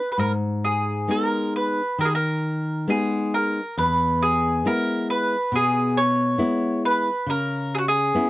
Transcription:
Already playing: mandolin B4
0.12 mandolin B4
0.18 nylon-string guitar G#2, mandolin A#4
0.65 mandolin G#4
1.08 nylon-string guitar G#3 B3 D#4, mandolin A#4
1.56 mandolin B4
1.98 nylon-string guitar D#3, mandolin A#4
2.05 mandolin G#4
2.15 mandolin A#4
2.88 nylon-string guitar G#3 B3 D#4, mandolin G#4
3.34 mandolin A#4
3.77 nylon-string guitar E2, mandolin B4
4.22 mandolin G#4
4.65 nylon-string guitar G#3 B3 E4, mandolin A#4
5.10 mandolin B4
5.52 nylon-string guitar B2, mandolin G#4
5.97 mandolin C#5
6.38 nylon-string guitar G#3 B3 E4
6.85 mandolin B4
7.26 nylon-string guitar C#3, mandolin A#4
7.75 mandolin F#4 G#4
7.88 mandolin G#4
8.15 nylon-string guitar B3 C#4 E4

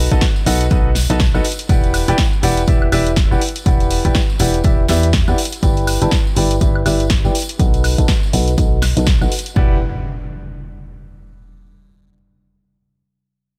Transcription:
0.11 fm bass B1, grand piano D#4 F#4 A4 B4 A5, kick, closed hi-hat, tambourine
0.21 kick, snare, tambourine
0.36 tambourine
0.46 fm bass B1, grand piano D#4 F#4 A4 B4 F#5, open hi-hat, tambourine
0.61 closed hi-hat
0.71 fm bass B1, grand piano D#4 F#4 A4 B4 D#5, kick, closed hi-hat, tambourine
0.95 snare, open hi-hat, tambourine
1.10 fm bass B1, grand piano D#4 F#4 A4 B4 A5, closed hi-hat, tambourine
1.20 kick, snare, closed hi-hat, tambourine
1.34 fm bass B1, grand piano D#4 F#4 A4 B4 F#5, tambourine, high woodblock
1.44 open hi-hat, tambourine
1.52 closed hi-hat
1.59 closed hi-hat, tambourine
1.69 fm bass E1, grand piano E4 G4 B4 D5 F#5, kick, closed hi-hat, tambourine
1.83 closed hi-hat, tambourine
1.94 open hi-hat, tambourine, high woodblock
2.08 fm bass E1, grand piano E4 G4 B4 D5 G5, closed hi-hat, tambourine
2.18 kick, snare, tambourine
2.33 tambourine
2.43 fm bass E1, grand piano E4 G4 B4 D5 F#5, open hi-hat, tambourine
2.57 closed hi-hat, tambourine
2.67 fm bass E1, grand piano E4 G4 B4 D5 E5, kick, closed hi-hat, tambourine
2.82 high woodblock
2.92 fm bass E1, grand piano E4 G4 B4 D5 E5, open hi-hat, tambourine, high woodblock
3.06 closed hi-hat, tambourine
3.16 kick, snare, closed hi-hat, tambourine
3.31 fm bass E1, grand piano E4 G4 B4 D5 F#5, tambourine
3.41 open hi-hat, tambourine
3.49 closed hi-hat
3.56 closed hi-hat, tambourine
3.66 fm bass E1, grand piano E4 G4 B4 D5 F#5, kick, closed hi-hat, tambourine
3.80 closed hi-hat, tambourine
3.90 open hi-hat, tambourine
4.05 fm bass E1, grand piano E4 G4 B4 D5 G5, kick, closed hi-hat
4.15 kick, snare, tambourine
4.30 tambourine
4.39 fm bass E1, grand piano E4 G4 B4 D5 F#5, open hi-hat, tambourine
4.54 closed hi-hat, tambourine
4.64 fm bass E1, grand piano E4 G4 B4 D5 E5, kick, closed hi-hat, tambourine
4.88 fm bass E2, grand piano E4 G4 B4 D5 E5, snare, open hi-hat, tambourine
5.03 closed hi-hat, tambourine
5.13 kick, snare, closed hi-hat, tambourine
5.28 fm bass E2, grand piano E4 G4 B4 D5 F#5, tambourine, high woodblock
5.38 open hi-hat, tambourine
5.45 closed hi-hat
5.52 closed hi-hat, tambourine
5.63 fm bass G1, grand piano E4 G4 B4 D5 G5, kick, closed hi-hat, tambourine
5.77 closed hi-hat, tambourine
5.87 open hi-hat, tambourine, high woodblock
6.02 fm bass G1, grand piano E4 G4 B4 D5 A5, closed hi-hat, tambourine
6.11 kick, snare, tambourine
6.27 tambourine
6.36 fm bass G1, grand piano E4 G4 B4 D5 G5, open hi-hat, tambourine
6.51 closed hi-hat, tambourine
6.61 fm bass G1, grand piano E4 G4 B4 D5 E5, kick, closed hi-hat, tambourine
6.75 high woodblock
6.86 fm bass G1, grand piano E4 G4 B4 D5 E5, open hi-hat, tambourine, high woodblock
7.00 closed hi-hat, tambourine
7.10 kick, snare, closed hi-hat, tambourine
7.25 fm bass G1, grand piano E4 G4 B4 D5 G5, tambourine
7.35 open hi-hat, tambourine
7.42 closed hi-hat
7.49 closed hi-hat, tambourine
7.59 fm bass B1, grand piano D#4 F#4 A4 B4 F#5, kick, closed hi-hat, tambourine
7.74 closed hi-hat, tambourine
7.84 open hi-hat, tambourine, high woodblock
7.98 fm bass B1, grand piano D#4 F#4 A4 B4 A5, kick, closed hi-hat, tambourine
8.08 kick, snare, tambourine
8.23 tambourine
8.33 fm bass B1, grand piano D#4 F#4 A4 B4 F#5, open hi-hat, tambourine
8.47 closed hi-hat, tambourine
8.58 fm bass B1, grand piano D#4 F#4 A4 B4 D#5, kick, closed hi-hat, tambourine
8.82 snare, open hi-hat, tambourine, high woodblock
8.97 fm bass B1, grand piano D#4 F#4 A4 B4 A5, closed hi-hat, tambourine
9.07 kick, snare, closed hi-hat, tambourine
9.21 fm bass B1, grand piano D#4 F#4 A4 B4 F#5, tambourine, high woodblock
9.32 open hi-hat, tambourine
9.39 closed hi-hat
9.46 closed hi-hat, tambourine
9.56 fm bass E1, grand piano E4 G4 B4 D5 F#5, kick, impact

